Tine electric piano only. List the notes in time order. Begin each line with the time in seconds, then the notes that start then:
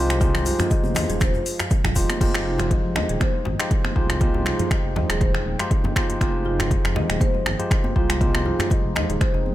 Already playing: G#3 D#4 F4 G4 C5
0.21 G#3 D#4 F4 G4 C5
1.96 G#3 D#4 F4 G4 C5
2.21 G#3 D#4 F4 G4 C5
3.59 G#3 D#4 F4 G4 C5
3.96 G#3 D#4 F4 G4 C5
4.21 G#3 D#4 F4 G4 C5
5.60 G#3 D#4 F4 G4 C5
5.96 G#3 D#4 F4 G4 C5
6.21 G#3 D#4 F4 G4 C5
7.59 G#3 D#4 F4 G4 C5
7.96 G#3 D#4 F4 G4 C5
8.21 G#3 D#4 F4 G4 C5